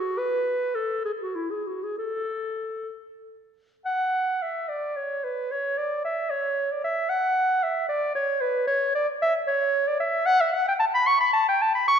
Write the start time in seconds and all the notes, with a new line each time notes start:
Already playing: F#4
0.18 B4
0.75 A4
1.05 G#4
1.22 F#4
1.36 E4
1.51 G#4
1.67 F#4
1.84 G#4
1.98 A4
3.86 F#5
4.42 E5
4.69 D5
4.97 C#5
5.24 B4
5.52 C#5
5.78 D5
6.05 E5
6.30 C#5
6.72 D5
6.84 E5
7.09 F#5
7.64 E5
7.89 D5
8.15 C#5
8.41 B4
8.67 C#5
8.95 D5
9.22 E5
9.47 C#5
9.88 D5
10.00 E5
10.26 F#5
10.41 E5
10.54 F#5
10.68 G5
10.80 A5
10.95 B5
11.07 C#6
11.21 B5
11.33 A5
11.49 G5
11.62 A5
11.75 B5
11.88 C#6